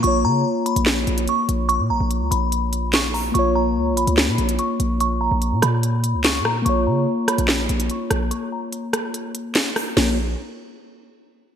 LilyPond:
<<
  \new Staff \with { instrumentName = "Synth bell" } { \time 4/4 \key bes \phrygian \tempo 4 = 145 des'''8 bes''4 ces'''4. des'''8 r8 | des'''8 bes''4 ces'''4. des'''8 bes''8 | des'''8 bes''4 ces'''4. des'''8 r8 | des'''8 bes''4 ces'''4. des'''8 bes''8 |
des'''8 bes''4 ces'''4. des'''8 r8 | des'''8 bes''4 ces'''4. des'''8 bes''8 | bes''8 r2. r8 | }
  \new Staff \with { instrumentName = "Tine electric piano" } { \time 4/4 \key bes \phrygian <bes f' des''>1~ | <bes f' des''>1 | <bes f' des''>1~ | <bes f' des''>1 |
<bes f' des''>1~ | <bes f' des''>1 | <bes f' des''>8 r2. r8 | }
  \new Staff \with { instrumentName = "808-style bass" } { \clef bass \time 4/4 \key bes \phrygian bes,,8 des8 r8. bes,,8. bes,,8 r8 bes,,8~ | bes,,16 bes,16 bes,,16 bes,,8 des,16 bes,,2~ bes,,8 | bes,,4 des,16. bes,,16. des,8 bes,16 bes,,8 r8 bes,,8~ | bes,,8. bes,,8 bes,16 bes,4~ bes,16 des,8~ des,32 bes,8~ bes,32 |
bes,,8 des8 r8. bes,,8. bes,,8 r8 bes,,8 | r1 | bes,,4 r2. | }
  \new DrumStaff \with { instrumentName = "Drums" } \drummode { \time 4/4 hh4 r8 hh16 hh16 <hc sn>8 hh16 hh16 hh8 hh8 | hh4 hh8 hh8 hh8 hh8 <hc hh sn>8 hho8 | hh4 r8 hh16 hh16 <hc sn>8 hh16 hh16 hh8 hh8 | hh4 hh8 <hh ss>8 hh8 hh8 <hc hh sn>8 ss8 |
hh4 r8 <hh ss>16 hh16 <hc sn>8 hh16 hh16 hh8 <hh ss>8 | hh4 hh8 <hh ss>8 hh8 hh8 <hc hh sn>8 <hho ss>8 | <cymc sn>4 r4 r4 r4 | }
>>